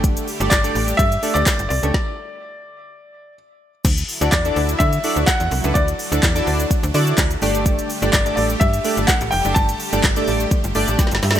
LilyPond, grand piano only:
\new Staff \with { instrumentName = "Grand piano" } { \time 4/4 \key d \major \tempo 4 = 126 r4 d''4 e''8. d''8. d''8~ | d''2. r4 | r4 d''4 e''4 fis''4 | d''4. r2 r8 |
r4 d''8 d''8 e''4 fis''8 g''8 | a''4 r2. | }